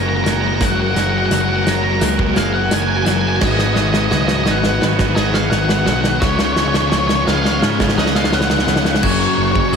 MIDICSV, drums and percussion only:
0, 0, Header, 1, 2, 480
1, 0, Start_track
1, 0, Key_signature, 6, "major"
1, 0, Tempo, 701754
1, 421, Time_signature, 4, 2, 24, 8
1, 6677, End_track
2, 0, Start_track
2, 0, Title_t, "Drums"
2, 180, Note_on_c, 9, 38, 80
2, 180, Note_on_c, 9, 42, 62
2, 248, Note_off_c, 9, 38, 0
2, 248, Note_off_c, 9, 42, 0
2, 416, Note_on_c, 9, 36, 103
2, 418, Note_on_c, 9, 38, 82
2, 418, Note_on_c, 9, 42, 92
2, 484, Note_off_c, 9, 36, 0
2, 486, Note_off_c, 9, 38, 0
2, 486, Note_off_c, 9, 42, 0
2, 659, Note_on_c, 9, 38, 74
2, 659, Note_on_c, 9, 42, 62
2, 728, Note_off_c, 9, 38, 0
2, 728, Note_off_c, 9, 42, 0
2, 897, Note_on_c, 9, 38, 86
2, 897, Note_on_c, 9, 42, 99
2, 966, Note_off_c, 9, 38, 0
2, 966, Note_off_c, 9, 42, 0
2, 1140, Note_on_c, 9, 38, 97
2, 1140, Note_on_c, 9, 42, 78
2, 1209, Note_off_c, 9, 38, 0
2, 1209, Note_off_c, 9, 42, 0
2, 1378, Note_on_c, 9, 38, 104
2, 1378, Note_on_c, 9, 42, 107
2, 1446, Note_off_c, 9, 38, 0
2, 1446, Note_off_c, 9, 42, 0
2, 1498, Note_on_c, 9, 36, 82
2, 1566, Note_off_c, 9, 36, 0
2, 1616, Note_on_c, 9, 38, 88
2, 1616, Note_on_c, 9, 42, 70
2, 1684, Note_off_c, 9, 38, 0
2, 1684, Note_off_c, 9, 42, 0
2, 1856, Note_on_c, 9, 38, 97
2, 1856, Note_on_c, 9, 42, 100
2, 1924, Note_off_c, 9, 38, 0
2, 1924, Note_off_c, 9, 42, 0
2, 2096, Note_on_c, 9, 38, 89
2, 2096, Note_on_c, 9, 42, 64
2, 2164, Note_off_c, 9, 38, 0
2, 2164, Note_off_c, 9, 42, 0
2, 2334, Note_on_c, 9, 38, 97
2, 2334, Note_on_c, 9, 49, 88
2, 2337, Note_on_c, 9, 36, 105
2, 2402, Note_off_c, 9, 38, 0
2, 2402, Note_off_c, 9, 49, 0
2, 2405, Note_off_c, 9, 36, 0
2, 2454, Note_on_c, 9, 38, 93
2, 2522, Note_off_c, 9, 38, 0
2, 2570, Note_on_c, 9, 38, 86
2, 2639, Note_off_c, 9, 38, 0
2, 2693, Note_on_c, 9, 38, 96
2, 2761, Note_off_c, 9, 38, 0
2, 2813, Note_on_c, 9, 38, 107
2, 2882, Note_off_c, 9, 38, 0
2, 2928, Note_on_c, 9, 38, 99
2, 2997, Note_off_c, 9, 38, 0
2, 3049, Note_on_c, 9, 38, 97
2, 3117, Note_off_c, 9, 38, 0
2, 3170, Note_on_c, 9, 38, 93
2, 3239, Note_off_c, 9, 38, 0
2, 3297, Note_on_c, 9, 38, 108
2, 3365, Note_off_c, 9, 38, 0
2, 3412, Note_on_c, 9, 38, 96
2, 3415, Note_on_c, 9, 36, 88
2, 3480, Note_off_c, 9, 38, 0
2, 3483, Note_off_c, 9, 36, 0
2, 3532, Note_on_c, 9, 38, 95
2, 3600, Note_off_c, 9, 38, 0
2, 3653, Note_on_c, 9, 38, 88
2, 3722, Note_off_c, 9, 38, 0
2, 3772, Note_on_c, 9, 38, 99
2, 3841, Note_off_c, 9, 38, 0
2, 3893, Note_on_c, 9, 38, 104
2, 3962, Note_off_c, 9, 38, 0
2, 4010, Note_on_c, 9, 38, 94
2, 4079, Note_off_c, 9, 38, 0
2, 4131, Note_on_c, 9, 38, 102
2, 4199, Note_off_c, 9, 38, 0
2, 4252, Note_on_c, 9, 38, 112
2, 4253, Note_on_c, 9, 36, 116
2, 4320, Note_off_c, 9, 38, 0
2, 4322, Note_off_c, 9, 36, 0
2, 4369, Note_on_c, 9, 38, 101
2, 4437, Note_off_c, 9, 38, 0
2, 4490, Note_on_c, 9, 38, 100
2, 4559, Note_off_c, 9, 38, 0
2, 4612, Note_on_c, 9, 38, 110
2, 4680, Note_off_c, 9, 38, 0
2, 4732, Note_on_c, 9, 38, 107
2, 4800, Note_off_c, 9, 38, 0
2, 4852, Note_on_c, 9, 38, 107
2, 4920, Note_off_c, 9, 38, 0
2, 4977, Note_on_c, 9, 38, 102
2, 5045, Note_off_c, 9, 38, 0
2, 5098, Note_on_c, 9, 38, 96
2, 5166, Note_off_c, 9, 38, 0
2, 5215, Note_on_c, 9, 38, 121
2, 5283, Note_off_c, 9, 38, 0
2, 5335, Note_on_c, 9, 38, 112
2, 5336, Note_on_c, 9, 36, 90
2, 5396, Note_off_c, 9, 38, 0
2, 5396, Note_on_c, 9, 38, 105
2, 5404, Note_off_c, 9, 36, 0
2, 5458, Note_off_c, 9, 38, 0
2, 5458, Note_on_c, 9, 38, 114
2, 5515, Note_off_c, 9, 38, 0
2, 5515, Note_on_c, 9, 38, 107
2, 5575, Note_off_c, 9, 38, 0
2, 5575, Note_on_c, 9, 38, 102
2, 5637, Note_off_c, 9, 38, 0
2, 5637, Note_on_c, 9, 38, 107
2, 5693, Note_off_c, 9, 38, 0
2, 5693, Note_on_c, 9, 38, 112
2, 5751, Note_off_c, 9, 38, 0
2, 5751, Note_on_c, 9, 38, 105
2, 5813, Note_off_c, 9, 38, 0
2, 5813, Note_on_c, 9, 38, 118
2, 5873, Note_off_c, 9, 38, 0
2, 5873, Note_on_c, 9, 38, 110
2, 5930, Note_off_c, 9, 38, 0
2, 5930, Note_on_c, 9, 38, 100
2, 5992, Note_off_c, 9, 38, 0
2, 5992, Note_on_c, 9, 38, 112
2, 6054, Note_off_c, 9, 38, 0
2, 6054, Note_on_c, 9, 38, 121
2, 6118, Note_off_c, 9, 38, 0
2, 6118, Note_on_c, 9, 38, 107
2, 6175, Note_on_c, 9, 49, 125
2, 6178, Note_on_c, 9, 36, 107
2, 6186, Note_off_c, 9, 38, 0
2, 6243, Note_off_c, 9, 49, 0
2, 6246, Note_off_c, 9, 36, 0
2, 6298, Note_on_c, 9, 38, 33
2, 6367, Note_off_c, 9, 38, 0
2, 6535, Note_on_c, 9, 36, 90
2, 6604, Note_off_c, 9, 36, 0
2, 6656, Note_on_c, 9, 46, 65
2, 6677, Note_off_c, 9, 46, 0
2, 6677, End_track
0, 0, End_of_file